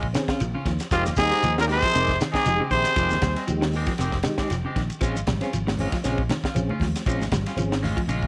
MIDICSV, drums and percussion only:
0, 0, Header, 1, 3, 480
1, 0, Start_track
1, 0, Tempo, 512383
1, 868, Time_signature, 4, 2, 24, 8
1, 7748, End_track
2, 0, Start_track
2, 0, Title_t, "Shekere"
2, 142, Note_on_c, 9, 82, 97
2, 236, Note_off_c, 9, 82, 0
2, 271, Note_on_c, 9, 82, 30
2, 364, Note_off_c, 9, 82, 0
2, 382, Note_on_c, 9, 82, 93
2, 476, Note_off_c, 9, 82, 0
2, 618, Note_on_c, 9, 82, 31
2, 712, Note_off_c, 9, 82, 0
2, 747, Note_on_c, 9, 82, 74
2, 840, Note_off_c, 9, 82, 0
2, 861, Note_on_c, 9, 82, 72
2, 954, Note_off_c, 9, 82, 0
2, 993, Note_on_c, 9, 82, 70
2, 1086, Note_off_c, 9, 82, 0
2, 1090, Note_on_c, 9, 82, 103
2, 1184, Note_off_c, 9, 82, 0
2, 1229, Note_on_c, 9, 82, 29
2, 1323, Note_off_c, 9, 82, 0
2, 1340, Note_on_c, 9, 82, 94
2, 1434, Note_off_c, 9, 82, 0
2, 1588, Note_on_c, 9, 82, 28
2, 1682, Note_off_c, 9, 82, 0
2, 1827, Note_on_c, 9, 82, 78
2, 1920, Note_off_c, 9, 82, 0
2, 2068, Note_on_c, 9, 82, 96
2, 2162, Note_off_c, 9, 82, 0
2, 2196, Note_on_c, 9, 82, 30
2, 2290, Note_off_c, 9, 82, 0
2, 2307, Note_on_c, 9, 82, 97
2, 2400, Note_off_c, 9, 82, 0
2, 2536, Note_on_c, 9, 82, 31
2, 2630, Note_off_c, 9, 82, 0
2, 2670, Note_on_c, 9, 82, 72
2, 2763, Note_off_c, 9, 82, 0
2, 2783, Note_on_c, 9, 82, 75
2, 2877, Note_off_c, 9, 82, 0
2, 2907, Note_on_c, 9, 82, 73
2, 3000, Note_off_c, 9, 82, 0
2, 3022, Note_on_c, 9, 82, 100
2, 3115, Note_off_c, 9, 82, 0
2, 3156, Note_on_c, 9, 82, 29
2, 3250, Note_off_c, 9, 82, 0
2, 3262, Note_on_c, 9, 82, 84
2, 3356, Note_off_c, 9, 82, 0
2, 3515, Note_on_c, 9, 82, 31
2, 3609, Note_off_c, 9, 82, 0
2, 3752, Note_on_c, 9, 82, 70
2, 3846, Note_off_c, 9, 82, 0
2, 3983, Note_on_c, 9, 82, 87
2, 4077, Note_off_c, 9, 82, 0
2, 4125, Note_on_c, 9, 82, 31
2, 4219, Note_off_c, 9, 82, 0
2, 4230, Note_on_c, 9, 82, 92
2, 4324, Note_off_c, 9, 82, 0
2, 4469, Note_on_c, 9, 82, 31
2, 4563, Note_off_c, 9, 82, 0
2, 4600, Note_on_c, 9, 82, 69
2, 4694, Note_off_c, 9, 82, 0
2, 4709, Note_on_c, 9, 82, 74
2, 4803, Note_off_c, 9, 82, 0
2, 4838, Note_on_c, 9, 82, 72
2, 4932, Note_off_c, 9, 82, 0
2, 4948, Note_on_c, 9, 82, 99
2, 5042, Note_off_c, 9, 82, 0
2, 5084, Note_on_c, 9, 82, 30
2, 5178, Note_off_c, 9, 82, 0
2, 5187, Note_on_c, 9, 82, 93
2, 5280, Note_off_c, 9, 82, 0
2, 5431, Note_on_c, 9, 82, 28
2, 5525, Note_off_c, 9, 82, 0
2, 5663, Note_on_c, 9, 82, 69
2, 5756, Note_off_c, 9, 82, 0
2, 5906, Note_on_c, 9, 82, 96
2, 5999, Note_off_c, 9, 82, 0
2, 6043, Note_on_c, 9, 82, 29
2, 6137, Note_off_c, 9, 82, 0
2, 6149, Note_on_c, 9, 82, 100
2, 6243, Note_off_c, 9, 82, 0
2, 6394, Note_on_c, 9, 82, 30
2, 6487, Note_off_c, 9, 82, 0
2, 6522, Note_on_c, 9, 82, 77
2, 6616, Note_off_c, 9, 82, 0
2, 6639, Note_on_c, 9, 82, 79
2, 6732, Note_off_c, 9, 82, 0
2, 6762, Note_on_c, 9, 82, 70
2, 6856, Note_off_c, 9, 82, 0
2, 6874, Note_on_c, 9, 82, 100
2, 6968, Note_off_c, 9, 82, 0
2, 7009, Note_on_c, 9, 82, 32
2, 7103, Note_off_c, 9, 82, 0
2, 7104, Note_on_c, 9, 82, 95
2, 7198, Note_off_c, 9, 82, 0
2, 7350, Note_on_c, 9, 82, 28
2, 7444, Note_off_c, 9, 82, 0
2, 7581, Note_on_c, 9, 82, 73
2, 7675, Note_off_c, 9, 82, 0
2, 7748, End_track
3, 0, Start_track
3, 0, Title_t, "Drums"
3, 25, Note_on_c, 9, 36, 69
3, 119, Note_off_c, 9, 36, 0
3, 134, Note_on_c, 9, 53, 54
3, 142, Note_on_c, 9, 38, 71
3, 228, Note_off_c, 9, 53, 0
3, 235, Note_off_c, 9, 38, 0
3, 264, Note_on_c, 9, 36, 76
3, 269, Note_on_c, 9, 38, 85
3, 358, Note_off_c, 9, 36, 0
3, 363, Note_off_c, 9, 38, 0
3, 376, Note_on_c, 9, 53, 53
3, 469, Note_off_c, 9, 53, 0
3, 614, Note_on_c, 9, 36, 68
3, 617, Note_on_c, 9, 53, 51
3, 624, Note_on_c, 9, 38, 31
3, 708, Note_off_c, 9, 36, 0
3, 711, Note_off_c, 9, 53, 0
3, 718, Note_off_c, 9, 38, 0
3, 750, Note_on_c, 9, 53, 56
3, 757, Note_on_c, 9, 38, 32
3, 843, Note_off_c, 9, 53, 0
3, 851, Note_off_c, 9, 38, 0
3, 855, Note_on_c, 9, 36, 96
3, 860, Note_on_c, 9, 53, 53
3, 867, Note_on_c, 9, 38, 32
3, 949, Note_off_c, 9, 36, 0
3, 954, Note_off_c, 9, 53, 0
3, 961, Note_off_c, 9, 38, 0
3, 997, Note_on_c, 9, 38, 35
3, 1091, Note_off_c, 9, 38, 0
3, 1097, Note_on_c, 9, 36, 71
3, 1103, Note_on_c, 9, 53, 57
3, 1111, Note_on_c, 9, 38, 79
3, 1191, Note_off_c, 9, 36, 0
3, 1197, Note_off_c, 9, 53, 0
3, 1205, Note_off_c, 9, 38, 0
3, 1237, Note_on_c, 9, 53, 54
3, 1244, Note_on_c, 9, 38, 29
3, 1330, Note_off_c, 9, 53, 0
3, 1338, Note_off_c, 9, 38, 0
3, 1345, Note_on_c, 9, 53, 56
3, 1438, Note_off_c, 9, 53, 0
3, 1483, Note_on_c, 9, 38, 65
3, 1576, Note_off_c, 9, 38, 0
3, 1583, Note_on_c, 9, 46, 73
3, 1676, Note_off_c, 9, 46, 0
3, 1710, Note_on_c, 9, 36, 85
3, 1716, Note_on_c, 9, 53, 64
3, 1723, Note_on_c, 9, 38, 31
3, 1804, Note_off_c, 9, 36, 0
3, 1809, Note_off_c, 9, 53, 0
3, 1817, Note_off_c, 9, 38, 0
3, 1826, Note_on_c, 9, 53, 59
3, 1920, Note_off_c, 9, 53, 0
3, 1952, Note_on_c, 9, 36, 73
3, 1964, Note_on_c, 9, 38, 32
3, 2045, Note_off_c, 9, 36, 0
3, 2057, Note_off_c, 9, 38, 0
3, 2073, Note_on_c, 9, 53, 60
3, 2080, Note_on_c, 9, 38, 76
3, 2166, Note_off_c, 9, 53, 0
3, 2174, Note_off_c, 9, 38, 0
3, 2190, Note_on_c, 9, 36, 80
3, 2200, Note_on_c, 9, 38, 78
3, 2284, Note_off_c, 9, 36, 0
3, 2294, Note_off_c, 9, 38, 0
3, 2301, Note_on_c, 9, 53, 62
3, 2395, Note_off_c, 9, 53, 0
3, 2539, Note_on_c, 9, 36, 67
3, 2540, Note_on_c, 9, 46, 64
3, 2632, Note_off_c, 9, 36, 0
3, 2634, Note_off_c, 9, 46, 0
3, 2668, Note_on_c, 9, 53, 59
3, 2676, Note_on_c, 9, 38, 30
3, 2762, Note_off_c, 9, 53, 0
3, 2769, Note_off_c, 9, 38, 0
3, 2774, Note_on_c, 9, 53, 59
3, 2777, Note_on_c, 9, 36, 94
3, 2782, Note_on_c, 9, 38, 30
3, 2868, Note_off_c, 9, 53, 0
3, 2870, Note_off_c, 9, 36, 0
3, 2875, Note_off_c, 9, 38, 0
3, 2924, Note_on_c, 9, 38, 34
3, 3013, Note_on_c, 9, 53, 56
3, 3017, Note_off_c, 9, 38, 0
3, 3017, Note_on_c, 9, 36, 72
3, 3021, Note_on_c, 9, 38, 74
3, 3107, Note_off_c, 9, 53, 0
3, 3111, Note_off_c, 9, 36, 0
3, 3114, Note_off_c, 9, 38, 0
3, 3151, Note_on_c, 9, 53, 56
3, 3158, Note_on_c, 9, 38, 29
3, 3244, Note_off_c, 9, 53, 0
3, 3252, Note_off_c, 9, 38, 0
3, 3257, Note_on_c, 9, 53, 52
3, 3351, Note_off_c, 9, 53, 0
3, 3394, Note_on_c, 9, 38, 64
3, 3488, Note_off_c, 9, 38, 0
3, 3497, Note_on_c, 9, 46, 72
3, 3591, Note_off_c, 9, 46, 0
3, 3621, Note_on_c, 9, 53, 58
3, 3626, Note_on_c, 9, 36, 81
3, 3628, Note_on_c, 9, 38, 35
3, 3715, Note_off_c, 9, 53, 0
3, 3719, Note_off_c, 9, 36, 0
3, 3722, Note_off_c, 9, 38, 0
3, 3727, Note_on_c, 9, 53, 53
3, 3734, Note_on_c, 9, 38, 30
3, 3820, Note_off_c, 9, 53, 0
3, 3828, Note_off_c, 9, 38, 0
3, 3863, Note_on_c, 9, 36, 66
3, 3863, Note_on_c, 9, 38, 30
3, 3956, Note_off_c, 9, 38, 0
3, 3957, Note_off_c, 9, 36, 0
3, 3961, Note_on_c, 9, 53, 53
3, 3968, Note_on_c, 9, 38, 80
3, 4054, Note_off_c, 9, 53, 0
3, 4062, Note_off_c, 9, 38, 0
3, 4101, Note_on_c, 9, 38, 78
3, 4105, Note_on_c, 9, 36, 81
3, 4195, Note_off_c, 9, 38, 0
3, 4198, Note_off_c, 9, 36, 0
3, 4215, Note_on_c, 9, 53, 55
3, 4222, Note_on_c, 9, 38, 31
3, 4308, Note_off_c, 9, 53, 0
3, 4316, Note_off_c, 9, 38, 0
3, 4459, Note_on_c, 9, 36, 64
3, 4461, Note_on_c, 9, 53, 51
3, 4469, Note_on_c, 9, 38, 29
3, 4553, Note_off_c, 9, 36, 0
3, 4555, Note_off_c, 9, 53, 0
3, 4562, Note_off_c, 9, 38, 0
3, 4588, Note_on_c, 9, 53, 55
3, 4682, Note_off_c, 9, 53, 0
3, 4690, Note_on_c, 9, 53, 51
3, 4698, Note_on_c, 9, 36, 101
3, 4784, Note_off_c, 9, 53, 0
3, 4791, Note_off_c, 9, 36, 0
3, 4934, Note_on_c, 9, 53, 53
3, 4937, Note_on_c, 9, 36, 70
3, 4941, Note_on_c, 9, 38, 74
3, 4942, Note_on_c, 9, 63, 96
3, 4942, Note_on_c, 9, 64, 78
3, 5028, Note_off_c, 9, 53, 0
3, 5031, Note_off_c, 9, 36, 0
3, 5035, Note_off_c, 9, 38, 0
3, 5035, Note_off_c, 9, 63, 0
3, 5035, Note_off_c, 9, 64, 0
3, 5067, Note_on_c, 9, 53, 58
3, 5074, Note_on_c, 9, 38, 28
3, 5160, Note_off_c, 9, 53, 0
3, 5168, Note_off_c, 9, 38, 0
3, 5181, Note_on_c, 9, 53, 54
3, 5275, Note_off_c, 9, 53, 0
3, 5316, Note_on_c, 9, 63, 76
3, 5324, Note_on_c, 9, 38, 64
3, 5408, Note_off_c, 9, 63, 0
3, 5408, Note_on_c, 9, 63, 86
3, 5408, Note_on_c, 9, 64, 87
3, 5417, Note_off_c, 9, 38, 0
3, 5419, Note_on_c, 9, 46, 68
3, 5501, Note_off_c, 9, 63, 0
3, 5501, Note_off_c, 9, 64, 0
3, 5512, Note_off_c, 9, 46, 0
3, 5547, Note_on_c, 9, 53, 61
3, 5549, Note_on_c, 9, 36, 79
3, 5554, Note_on_c, 9, 38, 34
3, 5640, Note_off_c, 9, 53, 0
3, 5643, Note_off_c, 9, 36, 0
3, 5648, Note_off_c, 9, 38, 0
3, 5659, Note_on_c, 9, 53, 54
3, 5666, Note_on_c, 9, 38, 29
3, 5753, Note_off_c, 9, 53, 0
3, 5760, Note_off_c, 9, 38, 0
3, 5790, Note_on_c, 9, 36, 73
3, 5883, Note_off_c, 9, 36, 0
3, 5897, Note_on_c, 9, 63, 103
3, 5904, Note_on_c, 9, 53, 57
3, 5911, Note_on_c, 9, 38, 74
3, 5991, Note_off_c, 9, 63, 0
3, 5997, Note_off_c, 9, 53, 0
3, 6005, Note_off_c, 9, 38, 0
3, 6030, Note_on_c, 9, 36, 76
3, 6042, Note_on_c, 9, 38, 78
3, 6124, Note_off_c, 9, 36, 0
3, 6135, Note_on_c, 9, 64, 80
3, 6136, Note_off_c, 9, 38, 0
3, 6143, Note_on_c, 9, 53, 60
3, 6229, Note_off_c, 9, 64, 0
3, 6237, Note_off_c, 9, 53, 0
3, 6270, Note_on_c, 9, 63, 87
3, 6364, Note_off_c, 9, 63, 0
3, 6368, Note_on_c, 9, 63, 73
3, 6368, Note_on_c, 9, 64, 87
3, 6379, Note_on_c, 9, 36, 62
3, 6385, Note_on_c, 9, 46, 57
3, 6393, Note_on_c, 9, 38, 29
3, 6461, Note_off_c, 9, 63, 0
3, 6461, Note_off_c, 9, 64, 0
3, 6473, Note_off_c, 9, 36, 0
3, 6479, Note_off_c, 9, 46, 0
3, 6486, Note_off_c, 9, 38, 0
3, 6516, Note_on_c, 9, 53, 59
3, 6523, Note_on_c, 9, 38, 32
3, 6610, Note_off_c, 9, 53, 0
3, 6617, Note_off_c, 9, 38, 0
3, 6617, Note_on_c, 9, 36, 94
3, 6621, Note_on_c, 9, 53, 55
3, 6711, Note_off_c, 9, 36, 0
3, 6715, Note_off_c, 9, 53, 0
3, 6752, Note_on_c, 9, 63, 73
3, 6761, Note_on_c, 9, 38, 33
3, 6845, Note_off_c, 9, 63, 0
3, 6854, Note_off_c, 9, 38, 0
3, 6854, Note_on_c, 9, 53, 58
3, 6855, Note_on_c, 9, 36, 73
3, 6861, Note_on_c, 9, 38, 76
3, 6865, Note_on_c, 9, 63, 103
3, 6865, Note_on_c, 9, 64, 72
3, 6947, Note_off_c, 9, 53, 0
3, 6949, Note_off_c, 9, 36, 0
3, 6955, Note_off_c, 9, 38, 0
3, 6959, Note_off_c, 9, 63, 0
3, 6959, Note_off_c, 9, 64, 0
3, 6991, Note_on_c, 9, 53, 63
3, 6998, Note_on_c, 9, 38, 28
3, 7085, Note_off_c, 9, 53, 0
3, 7092, Note_off_c, 9, 38, 0
3, 7096, Note_on_c, 9, 53, 55
3, 7189, Note_off_c, 9, 53, 0
3, 7235, Note_on_c, 9, 38, 65
3, 7329, Note_off_c, 9, 38, 0
3, 7340, Note_on_c, 9, 46, 70
3, 7348, Note_on_c, 9, 38, 29
3, 7349, Note_on_c, 9, 63, 85
3, 7349, Note_on_c, 9, 64, 86
3, 7434, Note_off_c, 9, 46, 0
3, 7442, Note_off_c, 9, 38, 0
3, 7443, Note_off_c, 9, 63, 0
3, 7443, Note_off_c, 9, 64, 0
3, 7466, Note_on_c, 9, 36, 88
3, 7471, Note_on_c, 9, 53, 62
3, 7560, Note_off_c, 9, 36, 0
3, 7565, Note_off_c, 9, 53, 0
3, 7577, Note_on_c, 9, 53, 56
3, 7670, Note_off_c, 9, 53, 0
3, 7705, Note_on_c, 9, 36, 71
3, 7719, Note_on_c, 9, 63, 77
3, 7748, Note_off_c, 9, 36, 0
3, 7748, Note_off_c, 9, 63, 0
3, 7748, End_track
0, 0, End_of_file